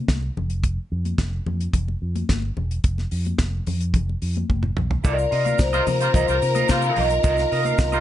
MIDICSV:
0, 0, Header, 1, 9, 480
1, 0, Start_track
1, 0, Key_signature, -3, "minor"
1, 0, Tempo, 550459
1, 555, Time_signature, 4, 2, 24, 8
1, 6978, End_track
2, 0, Start_track
2, 0, Title_t, "String section"
2, 0, Program_c, 0, 48
2, 4405, Note_on_c, 0, 70, 91
2, 4408, Note_on_c, 0, 82, 88
2, 6978, Note_off_c, 0, 70, 0
2, 6978, Note_off_c, 0, 82, 0
2, 6978, End_track
3, 0, Start_track
3, 0, Title_t, "Vibraphone"
3, 0, Program_c, 1, 11
3, 4413, Note_on_c, 1, 74, 104
3, 4885, Note_on_c, 1, 72, 98
3, 4900, Note_off_c, 1, 74, 0
3, 5357, Note_off_c, 1, 72, 0
3, 5367, Note_on_c, 1, 72, 91
3, 5850, Note_on_c, 1, 77, 114
3, 5856, Note_off_c, 1, 72, 0
3, 6090, Note_off_c, 1, 77, 0
3, 6091, Note_on_c, 1, 75, 104
3, 6978, Note_off_c, 1, 75, 0
3, 6978, End_track
4, 0, Start_track
4, 0, Title_t, "Clean electric guitar"
4, 0, Program_c, 2, 27
4, 4392, Note_on_c, 2, 65, 97
4, 4399, Note_on_c, 2, 70, 108
4, 4409, Note_on_c, 2, 75, 106
4, 4507, Note_off_c, 2, 75, 0
4, 4517, Note_off_c, 2, 70, 0
4, 4571, Note_off_c, 2, 65, 0
4, 4631, Note_on_c, 2, 65, 61
4, 4639, Note_on_c, 2, 70, 68
4, 4646, Note_on_c, 2, 75, 70
4, 4751, Note_off_c, 2, 75, 0
4, 4754, Note_off_c, 2, 70, 0
4, 4754, Note_on_c, 2, 77, 62
4, 4761, Note_off_c, 2, 65, 0
4, 4765, Note_on_c, 2, 70, 61
4, 4771, Note_on_c, 2, 65, 47
4, 4871, Note_off_c, 2, 65, 0
4, 4874, Note_off_c, 2, 70, 0
4, 4883, Note_off_c, 2, 77, 0
4, 4996, Note_on_c, 2, 75, 96
4, 5005, Note_on_c, 2, 70, 88
4, 5012, Note_on_c, 2, 65, 85
4, 5109, Note_off_c, 2, 65, 0
4, 5115, Note_off_c, 2, 70, 0
4, 5120, Note_off_c, 2, 75, 0
4, 5352, Note_on_c, 2, 65, 88
4, 5360, Note_on_c, 2, 70, 76
4, 5365, Note_on_c, 2, 75, 83
4, 5462, Note_off_c, 2, 75, 0
4, 5473, Note_off_c, 2, 70, 0
4, 5516, Note_off_c, 2, 65, 0
4, 5711, Note_on_c, 2, 75, 66
4, 5716, Note_on_c, 2, 70, 60
4, 5723, Note_on_c, 2, 65, 58
4, 5817, Note_off_c, 2, 65, 0
4, 5824, Note_off_c, 2, 70, 0
4, 5829, Note_off_c, 2, 75, 0
4, 6070, Note_on_c, 2, 65, 78
4, 6079, Note_on_c, 2, 70, 99
4, 6084, Note_on_c, 2, 75, 91
4, 6185, Note_off_c, 2, 75, 0
4, 6194, Note_off_c, 2, 70, 0
4, 6234, Note_off_c, 2, 65, 0
4, 6308, Note_on_c, 2, 65, 88
4, 6316, Note_on_c, 2, 70, 82
4, 6321, Note_on_c, 2, 75, 90
4, 6425, Note_off_c, 2, 75, 0
4, 6435, Note_off_c, 2, 70, 0
4, 6472, Note_off_c, 2, 65, 0
4, 6553, Note_on_c, 2, 65, 68
4, 6560, Note_on_c, 2, 70, 68
4, 6565, Note_on_c, 2, 75, 73
4, 6674, Note_off_c, 2, 70, 0
4, 6675, Note_off_c, 2, 75, 0
4, 6678, Note_on_c, 2, 77, 63
4, 6679, Note_off_c, 2, 65, 0
4, 6684, Note_on_c, 2, 70, 52
4, 6691, Note_on_c, 2, 65, 47
4, 6783, Note_off_c, 2, 65, 0
4, 6788, Note_off_c, 2, 70, 0
4, 6800, Note_off_c, 2, 77, 0
4, 6908, Note_on_c, 2, 75, 81
4, 6914, Note_on_c, 2, 70, 87
4, 6920, Note_on_c, 2, 65, 79
4, 6978, Note_off_c, 2, 65, 0
4, 6978, Note_off_c, 2, 70, 0
4, 6978, Note_off_c, 2, 75, 0
4, 6978, End_track
5, 0, Start_track
5, 0, Title_t, "Horn section"
5, 0, Program_c, 3, 61
5, 4999, Note_on_c, 3, 65, 88
5, 5001, Note_on_c, 3, 55, 80
5, 5001, Note_on_c, 3, 70, 88
5, 5076, Note_off_c, 3, 65, 0
5, 5077, Note_off_c, 3, 55, 0
5, 5077, Note_off_c, 3, 70, 0
5, 5239, Note_on_c, 3, 70, 92
5, 5240, Note_on_c, 3, 55, 85
5, 5241, Note_on_c, 3, 65, 87
5, 5315, Note_off_c, 3, 70, 0
5, 5316, Note_off_c, 3, 55, 0
5, 5317, Note_off_c, 3, 65, 0
5, 5478, Note_on_c, 3, 65, 73
5, 5478, Note_on_c, 3, 70, 89
5, 5479, Note_on_c, 3, 55, 78
5, 5554, Note_off_c, 3, 65, 0
5, 5554, Note_off_c, 3, 70, 0
5, 5555, Note_off_c, 3, 55, 0
5, 5838, Note_on_c, 3, 65, 111
5, 5838, Note_on_c, 3, 70, 121
5, 5839, Note_on_c, 3, 55, 113
5, 6143, Note_off_c, 3, 65, 0
5, 6143, Note_off_c, 3, 70, 0
5, 6144, Note_off_c, 3, 55, 0
5, 6913, Note_on_c, 3, 65, 79
5, 6914, Note_on_c, 3, 55, 87
5, 6915, Note_on_c, 3, 70, 85
5, 6978, Note_off_c, 3, 55, 0
5, 6978, Note_off_c, 3, 65, 0
5, 6978, Note_off_c, 3, 70, 0
5, 6978, End_track
6, 0, Start_track
6, 0, Title_t, "French horn section"
6, 0, Program_c, 4, 60
6, 4403, Note_on_c, 4, 51, 86
6, 4404, Note_on_c, 4, 65, 95
6, 4405, Note_on_c, 4, 58, 81
6, 4406, Note_on_c, 4, 60, 81
6, 6978, Note_off_c, 4, 51, 0
6, 6978, Note_off_c, 4, 58, 0
6, 6978, Note_off_c, 4, 60, 0
6, 6978, Note_off_c, 4, 65, 0
6, 6978, End_track
7, 0, Start_track
7, 0, Title_t, "Fingered electric bass"
7, 0, Program_c, 5, 33
7, 77, Note_on_c, 5, 36, 90
7, 251, Note_off_c, 5, 36, 0
7, 323, Note_on_c, 5, 29, 86
7, 672, Note_off_c, 5, 29, 0
7, 801, Note_on_c, 5, 41, 86
7, 975, Note_off_c, 5, 41, 0
7, 1035, Note_on_c, 5, 29, 89
7, 1212, Note_off_c, 5, 29, 0
7, 1276, Note_on_c, 5, 41, 87
7, 1452, Note_off_c, 5, 41, 0
7, 1515, Note_on_c, 5, 29, 96
7, 1692, Note_off_c, 5, 29, 0
7, 1761, Note_on_c, 5, 41, 85
7, 1936, Note_off_c, 5, 41, 0
7, 2001, Note_on_c, 5, 31, 85
7, 2176, Note_off_c, 5, 31, 0
7, 2240, Note_on_c, 5, 28, 87
7, 2416, Note_off_c, 5, 28, 0
7, 2479, Note_on_c, 5, 29, 94
7, 2655, Note_off_c, 5, 29, 0
7, 2719, Note_on_c, 5, 41, 87
7, 2895, Note_off_c, 5, 41, 0
7, 2958, Note_on_c, 5, 29, 86
7, 3135, Note_off_c, 5, 29, 0
7, 3200, Note_on_c, 5, 41, 92
7, 3436, Note_on_c, 5, 29, 85
7, 3449, Note_off_c, 5, 41, 0
7, 3613, Note_off_c, 5, 29, 0
7, 3681, Note_on_c, 5, 41, 87
7, 3857, Note_off_c, 5, 41, 0
7, 3923, Note_on_c, 5, 29, 99
7, 4098, Note_off_c, 5, 29, 0
7, 4162, Note_on_c, 5, 35, 80
7, 4337, Note_off_c, 5, 35, 0
7, 4400, Note_on_c, 5, 36, 119
7, 4576, Note_off_c, 5, 36, 0
7, 4640, Note_on_c, 5, 48, 106
7, 4816, Note_off_c, 5, 48, 0
7, 4879, Note_on_c, 5, 36, 109
7, 5055, Note_off_c, 5, 36, 0
7, 5120, Note_on_c, 5, 48, 98
7, 5295, Note_off_c, 5, 48, 0
7, 5356, Note_on_c, 5, 36, 103
7, 5445, Note_off_c, 5, 36, 0
7, 5483, Note_on_c, 5, 36, 93
7, 5569, Note_off_c, 5, 36, 0
7, 5602, Note_on_c, 5, 48, 91
7, 5776, Note_off_c, 5, 48, 0
7, 5841, Note_on_c, 5, 48, 117
7, 6015, Note_off_c, 5, 48, 0
7, 6081, Note_on_c, 5, 35, 89
7, 6255, Note_off_c, 5, 35, 0
7, 6315, Note_on_c, 5, 36, 112
7, 6491, Note_off_c, 5, 36, 0
7, 6557, Note_on_c, 5, 48, 93
7, 6732, Note_off_c, 5, 48, 0
7, 6792, Note_on_c, 5, 36, 94
7, 6968, Note_off_c, 5, 36, 0
7, 6978, End_track
8, 0, Start_track
8, 0, Title_t, "Muted clean electric guitar strokes"
8, 4517, Note_on_c, 9, 29, 44
8, 4604, Note_off_c, 9, 29, 0
8, 4881, Note_on_c, 9, 29, 47
8, 4968, Note_off_c, 9, 29, 0
8, 5120, Note_on_c, 9, 29, 38
8, 5207, Note_off_c, 9, 29, 0
8, 5235, Note_on_c, 9, 29, 51
8, 5322, Note_off_c, 9, 29, 0
8, 5472, Note_on_c, 9, 29, 50
8, 5559, Note_off_c, 9, 29, 0
8, 5592, Note_on_c, 9, 29, 42
8, 5680, Note_off_c, 9, 29, 0
8, 5828, Note_on_c, 9, 29, 42
8, 5915, Note_off_c, 9, 29, 0
8, 5951, Note_on_c, 9, 29, 52
8, 6039, Note_off_c, 9, 29, 0
8, 6196, Note_on_c, 9, 29, 50
8, 6283, Note_off_c, 9, 29, 0
8, 6435, Note_on_c, 9, 29, 39
8, 6522, Note_off_c, 9, 29, 0
8, 6794, Note_on_c, 9, 29, 49
8, 6881, Note_off_c, 9, 29, 0
8, 6978, End_track
9, 0, Start_track
9, 0, Title_t, "Drums"
9, 73, Note_on_c, 9, 38, 97
9, 74, Note_on_c, 9, 36, 83
9, 76, Note_on_c, 9, 42, 59
9, 77, Note_on_c, 9, 63, 59
9, 160, Note_off_c, 9, 38, 0
9, 161, Note_off_c, 9, 36, 0
9, 163, Note_off_c, 9, 42, 0
9, 164, Note_off_c, 9, 63, 0
9, 196, Note_on_c, 9, 62, 26
9, 284, Note_off_c, 9, 62, 0
9, 324, Note_on_c, 9, 64, 71
9, 411, Note_off_c, 9, 64, 0
9, 433, Note_on_c, 9, 42, 41
9, 521, Note_off_c, 9, 42, 0
9, 554, Note_on_c, 9, 36, 85
9, 554, Note_on_c, 9, 42, 58
9, 559, Note_on_c, 9, 62, 33
9, 641, Note_off_c, 9, 36, 0
9, 641, Note_off_c, 9, 42, 0
9, 646, Note_off_c, 9, 62, 0
9, 917, Note_on_c, 9, 42, 40
9, 919, Note_on_c, 9, 63, 56
9, 1004, Note_off_c, 9, 42, 0
9, 1006, Note_off_c, 9, 63, 0
9, 1032, Note_on_c, 9, 36, 107
9, 1032, Note_on_c, 9, 38, 105
9, 1034, Note_on_c, 9, 42, 65
9, 1040, Note_on_c, 9, 62, 37
9, 1119, Note_off_c, 9, 36, 0
9, 1119, Note_off_c, 9, 38, 0
9, 1121, Note_off_c, 9, 42, 0
9, 1128, Note_off_c, 9, 62, 0
9, 1277, Note_on_c, 9, 63, 51
9, 1277, Note_on_c, 9, 64, 77
9, 1364, Note_off_c, 9, 63, 0
9, 1364, Note_off_c, 9, 64, 0
9, 1399, Note_on_c, 9, 42, 45
9, 1487, Note_off_c, 9, 42, 0
9, 1513, Note_on_c, 9, 36, 100
9, 1513, Note_on_c, 9, 42, 67
9, 1520, Note_on_c, 9, 62, 34
9, 1520, Note_on_c, 9, 64, 70
9, 1600, Note_off_c, 9, 36, 0
9, 1601, Note_off_c, 9, 42, 0
9, 1607, Note_off_c, 9, 62, 0
9, 1607, Note_off_c, 9, 64, 0
9, 1642, Note_on_c, 9, 62, 33
9, 1730, Note_off_c, 9, 62, 0
9, 1880, Note_on_c, 9, 42, 38
9, 1880, Note_on_c, 9, 63, 68
9, 1967, Note_off_c, 9, 42, 0
9, 1967, Note_off_c, 9, 63, 0
9, 1998, Note_on_c, 9, 38, 103
9, 2000, Note_on_c, 9, 36, 81
9, 2000, Note_on_c, 9, 42, 57
9, 2003, Note_on_c, 9, 62, 28
9, 2003, Note_on_c, 9, 63, 62
9, 2085, Note_off_c, 9, 38, 0
9, 2087, Note_off_c, 9, 36, 0
9, 2087, Note_off_c, 9, 42, 0
9, 2090, Note_off_c, 9, 62, 0
9, 2090, Note_off_c, 9, 63, 0
9, 2113, Note_on_c, 9, 62, 27
9, 2201, Note_off_c, 9, 62, 0
9, 2239, Note_on_c, 9, 64, 67
9, 2326, Note_off_c, 9, 64, 0
9, 2362, Note_on_c, 9, 42, 43
9, 2449, Note_off_c, 9, 42, 0
9, 2475, Note_on_c, 9, 42, 57
9, 2477, Note_on_c, 9, 36, 106
9, 2481, Note_on_c, 9, 62, 35
9, 2562, Note_off_c, 9, 42, 0
9, 2564, Note_off_c, 9, 36, 0
9, 2568, Note_off_c, 9, 62, 0
9, 2600, Note_on_c, 9, 62, 27
9, 2602, Note_on_c, 9, 38, 25
9, 2687, Note_off_c, 9, 62, 0
9, 2690, Note_off_c, 9, 38, 0
9, 2714, Note_on_c, 9, 46, 67
9, 2801, Note_off_c, 9, 46, 0
9, 2835, Note_on_c, 9, 42, 42
9, 2846, Note_on_c, 9, 63, 55
9, 2922, Note_off_c, 9, 42, 0
9, 2933, Note_off_c, 9, 63, 0
9, 2951, Note_on_c, 9, 38, 101
9, 2953, Note_on_c, 9, 42, 56
9, 2955, Note_on_c, 9, 36, 103
9, 3039, Note_off_c, 9, 38, 0
9, 3041, Note_off_c, 9, 42, 0
9, 3042, Note_off_c, 9, 36, 0
9, 3196, Note_on_c, 9, 46, 60
9, 3202, Note_on_c, 9, 64, 81
9, 3283, Note_off_c, 9, 46, 0
9, 3289, Note_off_c, 9, 64, 0
9, 3317, Note_on_c, 9, 42, 50
9, 3404, Note_off_c, 9, 42, 0
9, 3434, Note_on_c, 9, 36, 107
9, 3436, Note_on_c, 9, 42, 64
9, 3451, Note_on_c, 9, 64, 68
9, 3522, Note_off_c, 9, 36, 0
9, 3524, Note_off_c, 9, 42, 0
9, 3538, Note_off_c, 9, 64, 0
9, 3570, Note_on_c, 9, 62, 28
9, 3658, Note_off_c, 9, 62, 0
9, 3678, Note_on_c, 9, 46, 59
9, 3765, Note_off_c, 9, 46, 0
9, 3796, Note_on_c, 9, 42, 38
9, 3810, Note_on_c, 9, 63, 66
9, 3883, Note_off_c, 9, 42, 0
9, 3897, Note_off_c, 9, 63, 0
9, 3920, Note_on_c, 9, 48, 48
9, 3921, Note_on_c, 9, 36, 78
9, 3932, Note_on_c, 9, 62, 33
9, 3932, Note_on_c, 9, 63, 61
9, 4008, Note_off_c, 9, 48, 0
9, 4009, Note_off_c, 9, 36, 0
9, 4019, Note_off_c, 9, 62, 0
9, 4019, Note_off_c, 9, 63, 0
9, 4035, Note_on_c, 9, 47, 59
9, 4043, Note_on_c, 9, 62, 28
9, 4122, Note_off_c, 9, 47, 0
9, 4131, Note_off_c, 9, 62, 0
9, 4156, Note_on_c, 9, 45, 85
9, 4170, Note_on_c, 9, 64, 61
9, 4244, Note_off_c, 9, 45, 0
9, 4258, Note_off_c, 9, 64, 0
9, 4279, Note_on_c, 9, 43, 86
9, 4366, Note_off_c, 9, 43, 0
9, 4398, Note_on_c, 9, 42, 63
9, 4398, Note_on_c, 9, 82, 93
9, 4400, Note_on_c, 9, 36, 108
9, 4407, Note_on_c, 9, 62, 42
9, 4485, Note_off_c, 9, 42, 0
9, 4485, Note_off_c, 9, 82, 0
9, 4487, Note_off_c, 9, 36, 0
9, 4494, Note_off_c, 9, 62, 0
9, 4520, Note_on_c, 9, 82, 54
9, 4607, Note_off_c, 9, 82, 0
9, 4638, Note_on_c, 9, 46, 73
9, 4725, Note_off_c, 9, 46, 0
9, 4758, Note_on_c, 9, 42, 48
9, 4763, Note_on_c, 9, 63, 67
9, 4766, Note_on_c, 9, 82, 49
9, 4845, Note_off_c, 9, 42, 0
9, 4850, Note_off_c, 9, 63, 0
9, 4854, Note_off_c, 9, 82, 0
9, 4870, Note_on_c, 9, 82, 93
9, 4876, Note_on_c, 9, 36, 124
9, 4878, Note_on_c, 9, 38, 114
9, 4880, Note_on_c, 9, 42, 73
9, 4881, Note_on_c, 9, 62, 47
9, 4957, Note_off_c, 9, 82, 0
9, 4963, Note_off_c, 9, 36, 0
9, 4965, Note_off_c, 9, 38, 0
9, 4967, Note_off_c, 9, 42, 0
9, 4968, Note_off_c, 9, 62, 0
9, 4996, Note_on_c, 9, 82, 59
9, 5003, Note_on_c, 9, 62, 43
9, 5083, Note_off_c, 9, 82, 0
9, 5090, Note_off_c, 9, 62, 0
9, 5116, Note_on_c, 9, 46, 71
9, 5117, Note_on_c, 9, 82, 67
9, 5118, Note_on_c, 9, 63, 65
9, 5118, Note_on_c, 9, 64, 84
9, 5203, Note_off_c, 9, 46, 0
9, 5204, Note_off_c, 9, 82, 0
9, 5205, Note_off_c, 9, 63, 0
9, 5205, Note_off_c, 9, 64, 0
9, 5237, Note_on_c, 9, 42, 57
9, 5240, Note_on_c, 9, 82, 60
9, 5324, Note_off_c, 9, 42, 0
9, 5327, Note_off_c, 9, 82, 0
9, 5354, Note_on_c, 9, 42, 72
9, 5355, Note_on_c, 9, 36, 109
9, 5364, Note_on_c, 9, 64, 89
9, 5365, Note_on_c, 9, 82, 85
9, 5441, Note_off_c, 9, 42, 0
9, 5442, Note_off_c, 9, 36, 0
9, 5451, Note_off_c, 9, 64, 0
9, 5452, Note_off_c, 9, 82, 0
9, 5479, Note_on_c, 9, 62, 34
9, 5479, Note_on_c, 9, 82, 63
9, 5566, Note_off_c, 9, 62, 0
9, 5566, Note_off_c, 9, 82, 0
9, 5598, Note_on_c, 9, 82, 60
9, 5599, Note_on_c, 9, 46, 67
9, 5685, Note_off_c, 9, 82, 0
9, 5686, Note_off_c, 9, 46, 0
9, 5710, Note_on_c, 9, 82, 66
9, 5718, Note_on_c, 9, 42, 46
9, 5718, Note_on_c, 9, 63, 79
9, 5797, Note_off_c, 9, 82, 0
9, 5805, Note_off_c, 9, 42, 0
9, 5805, Note_off_c, 9, 63, 0
9, 5828, Note_on_c, 9, 82, 88
9, 5835, Note_on_c, 9, 38, 118
9, 5838, Note_on_c, 9, 36, 96
9, 5838, Note_on_c, 9, 42, 76
9, 5839, Note_on_c, 9, 62, 38
9, 5839, Note_on_c, 9, 63, 76
9, 5916, Note_off_c, 9, 82, 0
9, 5922, Note_off_c, 9, 38, 0
9, 5925, Note_off_c, 9, 36, 0
9, 5925, Note_off_c, 9, 42, 0
9, 5926, Note_off_c, 9, 62, 0
9, 5926, Note_off_c, 9, 63, 0
9, 5944, Note_on_c, 9, 82, 62
9, 5951, Note_on_c, 9, 62, 35
9, 6032, Note_off_c, 9, 82, 0
9, 6038, Note_off_c, 9, 62, 0
9, 6070, Note_on_c, 9, 46, 59
9, 6074, Note_on_c, 9, 64, 80
9, 6157, Note_off_c, 9, 46, 0
9, 6161, Note_off_c, 9, 64, 0
9, 6192, Note_on_c, 9, 82, 64
9, 6195, Note_on_c, 9, 42, 44
9, 6279, Note_off_c, 9, 82, 0
9, 6282, Note_off_c, 9, 42, 0
9, 6308, Note_on_c, 9, 62, 40
9, 6310, Note_on_c, 9, 82, 89
9, 6312, Note_on_c, 9, 42, 60
9, 6314, Note_on_c, 9, 36, 116
9, 6395, Note_off_c, 9, 62, 0
9, 6398, Note_off_c, 9, 82, 0
9, 6399, Note_off_c, 9, 42, 0
9, 6401, Note_off_c, 9, 36, 0
9, 6425, Note_on_c, 9, 62, 32
9, 6431, Note_on_c, 9, 82, 57
9, 6440, Note_on_c, 9, 38, 35
9, 6512, Note_off_c, 9, 62, 0
9, 6519, Note_off_c, 9, 82, 0
9, 6527, Note_off_c, 9, 38, 0
9, 6556, Note_on_c, 9, 46, 78
9, 6643, Note_off_c, 9, 46, 0
9, 6670, Note_on_c, 9, 63, 66
9, 6676, Note_on_c, 9, 42, 44
9, 6680, Note_on_c, 9, 82, 53
9, 6758, Note_off_c, 9, 63, 0
9, 6763, Note_off_c, 9, 42, 0
9, 6767, Note_off_c, 9, 82, 0
9, 6785, Note_on_c, 9, 82, 80
9, 6789, Note_on_c, 9, 62, 44
9, 6790, Note_on_c, 9, 36, 127
9, 6792, Note_on_c, 9, 38, 120
9, 6794, Note_on_c, 9, 42, 68
9, 6872, Note_off_c, 9, 82, 0
9, 6877, Note_off_c, 9, 36, 0
9, 6877, Note_off_c, 9, 62, 0
9, 6879, Note_off_c, 9, 38, 0
9, 6881, Note_off_c, 9, 42, 0
9, 6909, Note_on_c, 9, 62, 44
9, 6911, Note_on_c, 9, 82, 59
9, 6978, Note_off_c, 9, 62, 0
9, 6978, Note_off_c, 9, 82, 0
9, 6978, End_track
0, 0, End_of_file